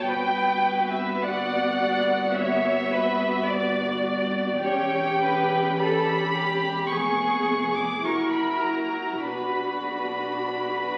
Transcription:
0.04 4.58 G1 medium
0.04 4.58 G2 medium
0.04 4.58 B3 medium
0.04 4.58 F#4 medium
0.04 0.90 G5 loud
0.09 1.23 B4 medium
0.93 1.21 E5 medium
1.22 1.79 D5 medium
1.22 2.36 F#5 medium
1.81 2.36 D5 medium
2.34 2.92 C#5 medium
2.34 3.48 E5 medium
2.93 3.49 B4 medium
3.47 4.04 D5 medium
3.47 4.63 D5 medium
4.61 6.90 E1 medium
4.61 6.90 E2 medium
4.61 6.86 C#4 medium
4.61 6.86 G4 medium
4.61 5.19 C#5 medium
4.61 5.72 G5 medium
5.20 5.76 B4 medium
5.75 6.89 B5 medium
5.80 6.34 A4 medium
6.34 6.89 G4 medium
6.89 8.04 F1 medium
6.89 8.05 F2 medium
6.89 8.00 B3 medium
6.89 8.00 G#4 medium
6.89 8.06 G#4 medium
6.89 7.75 C#6 medium
7.74 8.04 D6 medium
8.03 9.23 F#1 soft
8.03 9.24 F#2 medium
8.03 9.19 E4 soft
8.03 10.98 F#4 medium
8.03 9.23 A#4 medium
8.03 8.33 C#6 medium
8.33 8.62 B5 medium
8.63 9.23 A#5 medium
9.23 10.98 B1 soft
9.23 10.98 B2 soft
9.23 10.98 D4 soft
9.23 10.32 B4 soft
9.23 10.98 B5 medium
10.46 10.98 B4 soft

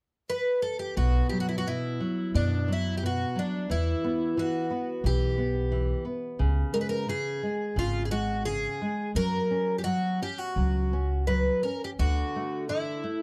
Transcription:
0.30 0.62 B4 medium
0.62 0.79 A4 medium
0.79 0.97 G4 medium
0.97 1.19 B1 medium
0.97 1.65 B2 medium
0.97 1.29 F#4 medium
1.29 1.65 F#3 soft
1.29 1.39 G4 medium
1.40 1.48 F#4 medium
1.49 1.57 E4 medium
1.58 1.66 F#4 medium
1.67 2.00 B2 soft
1.67 2.35 E4 medium
2.00 2.34 F#3 soft
2.34 3.23 F#2 medium
2.34 2.68 B2 soft
2.34 2.70 D4 medium
2.68 3.02 F#3 soft
2.72 2.97 E4 medium
2.98 3.04 G4 medium
3.03 3.36 B2 soft
3.03 3.39 F#4 medium
3.36 3.69 F#3 soft
3.36 3.69 D4 medium
3.70 3.93 E2 medium
3.70 4.36 E3 medium
3.70 4.40 E4 medium
4.04 4.37 B3 soft
4.37 4.70 E3 soft
4.37 5.06 F#4 medium
4.71 5.03 B3 soft
5.04 5.92 B1 medium
5.04 5.37 E3 soft
5.04 6.03 G4 medium
5.38 5.71 B3 soft
5.72 6.05 E3 soft
6.05 6.38 B3 soft
6.39 6.62 C#2 medium
6.39 7.07 C#3 medium
6.73 7.06 G#3 soft
6.73 6.77 A#4 medium
6.81 6.88 B4 medium
6.89 7.07 A#4 medium
7.08 7.41 C#3 soft
7.08 7.78 G#4 medium
7.43 7.76 G#3 soft
7.76 8.66 G#1 medium
7.76 8.09 C#3 soft
7.76 8.05 F4 medium
8.05 8.11 G#4 soft
8.11 8.44 G#3 soft
8.11 8.43 F#4 medium
8.45 8.80 C#3 soft
8.45 9.10 G#4 medium
8.81 9.14 G#3 soft
9.15 9.37 F#2 medium
9.15 9.85 F#3 medium
9.15 9.78 A#4 medium
9.51 9.84 C#4 soft
9.78 9.83 G4 medium
9.84 10.19 F#3 soft
9.84 10.20 F#4 medium
10.22 10.55 C#4 soft
10.22 10.38 G4 medium
10.38 11.27 F#4 medium
10.56 11.48 C#2 medium
10.56 10.91 F#3 soft
10.93 11.27 C#4 soft
11.27 11.62 F#3 soft
11.27 11.63 B4 medium
11.63 11.98 C#4 soft
11.63 11.81 A#4 medium
11.84 11.89 G4 medium
11.99 12.21 D2 medium
11.99 12.69 D3 medium
11.99 12.64 F#4 medium
12.36 12.68 A3 soft
12.69 13.02 D3 soft
12.69 13.22 E4 medium
13.04 13.22 A3 soft

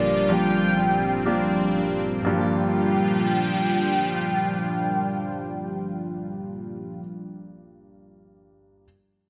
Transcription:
0.00 2.23 G1 medium
0.00 2.20 G2 medium
0.00 2.23 G2 medium
0.00 2.23 A#2 medium
0.00 2.23 F3 medium
0.00 2.24 G3 medium
0.00 0.29 A#3 medium
0.00 2.33 A#3 soft
0.00 0.28 D4 medium
0.00 0.29 D4 medium
0.00 0.77 D4 soft
0.00 0.29 F4 medium
0.00 2.24 F4 medium
0.00 0.30 G4 medium
0.00 1.26 G4 soft
0.00 0.25 A#4 medium
0.00 0.30 D5 medium
0.29 2.30 F3 soft
0.29 1.21 A#3 medium
0.29 2.25 C4 medium
0.29 1.21 D4 soft
0.29 1.22 F4 soft
0.29 1.22 G4 medium
0.29 1.74 G5 loud
0.77 1.76 D4 soft
1.25 2.21 A#3 medium
1.25 2.21 D4 medium
1.25 2.21 F4 soft
1.25 2.40 G4 soft
1.25 2.22 G4 medium
1.77 2.37 D4 soft
2.21 6.98 G2 medium
2.25 7.00 G2 medium
2.25 7.01 A#2 medium
2.25 7.03 D3 soft
2.25 7.01 F3 medium
2.25 7.01 G3 medium
2.25 6.98 A#3 medium
2.25 7.00 D4 soft
2.25 7.00 D4 medium
2.25 7.01 F4 medium
2.25 7.02 G4 medium
2.25 7.01 G5 medium
2.30 7.07 F3 medium
2.30 7.11 A#3 medium
2.37 7.15 D4 medium
2.37 7.18 G4 medium

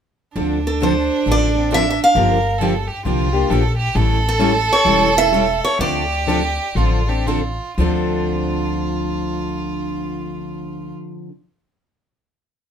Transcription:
0.34 1.08 D2 medium
0.34 0.58 D3 medium
0.34 0.58 F3 medium
0.34 0.58 C4 medium
0.34 2.17 D4 loud
0.34 0.58 D4 medium
0.38 0.59 A4 medium
0.67 0.81 A4 medium
0.81 0.93 D3 medium
0.81 0.93 F3 medium
0.81 0.93 C4 medium
0.81 0.93 D4 medium
0.81 0.93 A4 medium
0.81 1.24 C5 medium
1.26 1.98 A1 medium
1.26 1.48 D3 medium
1.26 1.48 F3 medium
1.26 1.48 C4 medium
1.26 1.48 D4 medium
1.26 1.48 A4 medium
1.31 1.74 D5 medium
1.55 1.72 C4 soft
1.55 1.72 D4 medium
1.55 1.71 A4 medium
1.71 1.82 D3 medium
1.71 1.83 F3 medium
1.71 1.83 C4 medium
1.71 1.83 D4 medium
1.71 1.83 A4 medium
1.71 1.89 E5 medium
1.90 1.99 E5 medium
2.04 2.59 F5 medium
2.15 2.87 G1 medium
2.15 2.37 D3 medium
2.15 2.37 F3 medium
2.15 2.37 A#3 medium
2.15 2.37 D4 medium
2.15 2.38 G4 medium
2.15 2.60 A#4 loud
2.59 2.72 D3 medium
2.59 2.72 F3 loud
2.59 2.72 A#3 medium
2.59 2.73 D4 medium
2.59 2.73 G4 loud
2.59 2.89 A4 medium
2.88 3.05 G4 medium
3.05 3.44 C2 medium
3.05 3.27 D3 medium
3.05 3.27 F3 medium
3.05 3.27 A#3 medium
3.05 3.27 D4 medium
3.05 3.52 F4 medium
3.05 3.28 G4 medium
3.33 3.49 A#3 soft
3.33 3.49 D4 soft
3.33 3.49 G4 medium
3.49 3.89 A#1 medium
3.49 3.61 D3 medium
3.49 3.61 F3 medium
3.49 3.62 A#3 medium
3.49 3.62 D4 medium
3.49 3.62 G4 medium
3.49 3.77 A4 medium
3.78 3.97 G4 medium
3.95 4.68 A1 medium
3.95 4.17 E3 medium
3.95 4.17 G3 medium
3.95 4.17 C#4 medium
3.95 4.17 E4 medium
3.95 5.79 A4 loud
3.95 4.17 A4 medium
4.29 4.73 A4 medium
4.39 4.51 E3 medium
4.39 4.52 G3 medium
4.39 4.51 C#4 loud
4.39 4.52 E4 medium
4.39 4.52 A4 loud
4.73 5.14 C#5 medium
4.85 5.60 E1 medium
4.85 5.07 E3 medium
4.85 5.08 G3 medium
4.85 5.08 C#4 medium
4.85 5.08 E4 medium
4.85 5.08 A4 medium
5.15 5.31 C#4 soft
5.15 5.32 E4 medium
5.15 5.32 A4 medium
5.15 5.60 E5 loud
5.32 5.44 E3 medium
5.32 5.44 G3 medium
5.32 5.44 C#4 medium
5.32 5.44 E4 medium
5.32 5.44 A4 medium
5.65 5.80 C#5 medium
5.79 6.57 D2 medium
5.79 6.02 D3 medium
5.79 6.02 F3 medium
5.79 6.02 C4 medium
5.79 6.02 D4 medium
5.79 6.79 G4 loud
5.79 6.03 A4 medium
5.79 7.23 D5 medium
6.27 6.39 D3 medium
6.27 6.40 F3 loud
6.27 6.39 C4 loud
6.27 6.40 D4 medium
6.27 6.40 A4 loud
6.75 7.58 A1 medium
6.75 6.99 D3 medium
6.75 6.99 F3 medium
6.75 7.00 C4 medium
6.75 7.00 D4 medium
6.75 7.10 F4 medium
6.75 7.00 A4 medium
7.07 7.27 C4 soft
7.07 7.26 D4 medium
7.07 7.28 G4 medium
7.07 7.26 A4 medium
7.27 7.39 D3 medium
7.27 7.40 F3 medium
7.27 7.40 C4 medium
7.27 7.40 D4 medium
7.27 7.79 F4 medium
7.27 7.40 A4 medium
7.78 10.91 D2 medium
7.78 11.28 D3 medium
7.78 11.29 F3 medium
7.78 11.30 C4 medium
7.78 11.31 D4 medium
7.78 10.93 F4 medium
7.78 11.32 A4 medium

